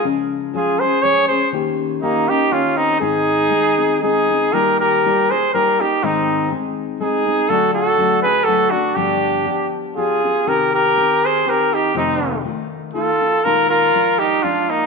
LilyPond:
<<
  \new Staff \with { instrumentName = "Trumpet" } { \time 3/4 \key aes \major \tempo 4 = 121 r4 aes'8 c''8 des''8 c''8 | r4 ees'8 g'8 f'8 ees'8 | aes'2 aes'4 | \key ees \major bes'8 bes'4 c''8 bes'8 g'8 |
ees'4 r4 aes'4 | a'8 a'4 ces''8 a'8 fis'8 | g'4. r8 aes'4 | bes'8 bes'4 c''8 bes'8 g'8 |
ees'4 r4 a'4 | bes'8 bes'4 g'8 f'8 ees'8 | }
  \new Staff \with { instrumentName = "Trumpet" } { \time 3/4 \key aes \major r4 f'8 aes'8 aes'8 aes'8 | r4 bes8 ees'8 des'8 c'8 | ees'2 ees'4 | \key ees \major g'8 g'4 aes'8 g'8 ees'8 |
c'4 r4 ees'4 | fis'8 fis'4 aes'8 fis'8 d'8 | d'4. r8 f'4 | g'8 g'4 aes'8 g'8 ees'8 |
c'4 r4 f'4 | f'8 f'4 ees'8 d'8 bes8 | }
  \new Staff \with { instrumentName = "Nylon-string guitar" } { \time 3/4 \key aes \major <des f aes des' aes'>4 <f aes des' aes'>8 <aes des' aes'>8 <f aes aes'>8 <aes des' aes'>8 | <ees bes des' g'>4 <ees bes des' g'>8 <bes des'>8 <ees bes des' g'>4 | <aes, ees aes c' ees' aes'>4 <aes c' ees' aes'>8 <aes c' ees' aes'>8 <aes c' ees' aes'>8 <aes c' ees' aes'>8 | \key ees \major <ees g bes ees' f'>4 <g bes ees' f'>8 <bes ees' f'>8 <g bes ees' f'>8 <bes ees' f'>8 |
<aes, ees aes c' ees' aes'>4 <aes c' ees' aes'>4 <aes c' ees' aes'>8 <aes c' ees' aes'>8 | <d fis a d' fis'>4 <fis a d' fis'>8 <a d' fis'>8 <fis a d' fis'>8 <a d' fis'>8 | <g, d f b d' g'>4 <f b d' g'>4 <f b d' g'>8 <f b d' g'>8 | <c ees c' ees' g'>4 <ees c' ees' g'>4 <ees c' ees' g'>4 |
<f, c ees a ees' f'>4 <ees a ees' f'>4 <ees a ees' f'>8 <ees a ees' f'>8 | <bes, ees aes ees' f'>4 <f aes d' f'>4 <f aes d' f'>4 | }
>>